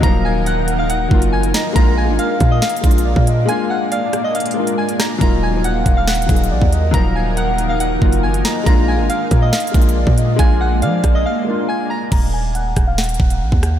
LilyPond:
<<
  \new Staff \with { instrumentName = "Synth bell" } { \time 4/4 \key ees \minor \tempo 4 = 139 <bes'' bes'''>8 <aes'' aes'''>8 <ges'' ges'''>8. <f'' f'''>16 <ges'' ges'''>4 <aes'' aes'''>8 <bes'' bes'''>8 | <bes'' bes'''>8 <aes'' aes'''>8 <f'' f'''>8. <ees'' ees'''>16 <f'' f'''>2 | <aes'' aes'''>8 <ges'' ges'''>8 <f'' f'''>8. <ees'' ees'''>16 <f'' f'''>4 <aes'' aes'''>8 <bes'' bes'''>8 | <bes'' bes'''>8 <aes'' aes'''>8 <ges'' ges'''>8. <f'' f'''>16 <ges'' ges'''>2 |
<bes'' bes'''>8 <aes'' aes'''>8 <ges'' ges'''>8. <f'' f'''>16 <ges'' ges'''>4 <aes'' aes'''>8 <bes'' bes'''>8 | <bes'' bes'''>8 <aes'' aes'''>8 <f'' f'''>8. <ees'' ees'''>16 <f'' f'''>2 | <aes'' aes'''>8 <ges'' ges'''>8 <f'' f'''>8. <ees'' ees'''>16 <f'' f'''>4 <aes'' aes'''>8 <bes'' bes'''>8 | <bes'' bes'''>8 <aes'' aes'''>8 <ges'' ges'''>8. <f'' f'''>16 <ges'' ges'''>2 | }
  \new Staff \with { instrumentName = "Soft synth lead" } { \time 4/4 \key ees \minor f''4 ges''4 r4. ees''8 | f''2. d''8 ees''8 | f''4 d''4. bes'8 r4 | f''2. d''8 ees''8 |
f''4 ges''4 r4. ees''8 | f''2. d''8 ees''8 | f''4 d''4. bes'8 r4 | r1 | }
  \new Staff \with { instrumentName = "Ambient pad" } { \time 4/4 \key ees \minor <ees bes ees' bes'>1 | <aes d'>1~ | <aes d'>1 | <ees ees' bes'>1~ |
<ees ees' bes'>1 | <aes bes d'>1~ | <aes bes d'>1 | r1 | }
  \new Staff \with { instrumentName = "Grand piano" } { \time 4/4 \key ees \minor <f ges bes ees'>4.~ <f ges bes ees'>16 r8. <ges bes ees' f'>4~ <ges bes ees' f'>16 r16 | <aes bes d' f'>8. <aes bes d' f'>4. r16 <aes bes d' f'>4~ <aes bes d' f'>16 r16 | <aes bes d' f'>4.~ <aes bes d' f'>16 r8. <aes bes d' f'>4~ <aes bes d' f'>16 r16 | <ges bes ees' f'>8. <f ges bes ees'>4. r16 <ges bes ees' aes'>4~ <ges bes ees' aes'>16 r16 |
<f ges bes ees'>4.~ <f ges bes ees'>16 r8. <ges bes ees' f'>4~ <ges bes ees' f'>16 r16 | <aes bes d' f'>8. <aes bes d' f'>4. r16 <aes bes d' f'>4~ <aes bes d' f'>16 r16 | <aes bes d' f'>4.~ <aes bes d' f'>16 r8. <aes bes d' f'>4~ <aes bes d' f'>16 r16 | r1 | }
  \new Staff \with { instrumentName = "808-style bass" } { \clef bass \time 4/4 \key ees \minor ees,,2~ ees,,8 ges,,4 r8 | bes,,8. aes,,16 r8 bes,8 r8 bes,,8. bes,8. | r1 | ees,,4. ees,,4 ees,,8 bes,,16 ees,8. |
ees,,2~ ees,,8 ges,,4 r8 | bes,,8. aes,,16 r8 bes,8 r8 bes,,8. bes,8. | bes,,4 f8 bes,,8 r2 | ees,,4. ees,,4 ees,,8 bes,,16 ees,8. | }
  \new DrumStaff \with { instrumentName = "Drums" } \drummode { \time 4/4 <hh bd>4 hh8 hh8 hh8 bd16 hh16 r16 hh16 <hh sn>8 | <hh bd>4 hh8 <hh bd>8 \tuplet 3/2 { <hh sn>16 hh16 hh16 <hh bd>16 hh16 hh16 } r16 bd16 hh8 | hh4 hh8 <hh ss>8 hh32 hh32 hh32 hh16. hh16 r16 hh16 <hh ss sn>8 | <hh bd>4 hh8 <hh bd>8 \tuplet 3/2 { <hh sn>16 hh16 hh16 <hh bd>16 hh16 hh16 } r16 bd16 hh8 |
<hh bd>4 hh8 hh8 hh8 bd16 hh16 r16 hh16 <hh sn>8 | <hh bd>4 hh8 <hh bd>8 \tuplet 3/2 { <hh sn>16 hh16 hh16 <hh bd>16 hh16 hh16 } r16 bd16 hh8 | <hh bd>4 hh8 <hh bd ss>8 r4 r4 | <cymc hh bd>4 hh8 <hh bd ss>8 <hh sn>32 hh32 hh32 hh32 bd16 hh16 r16 bd16 <hh ss>8 | }
>>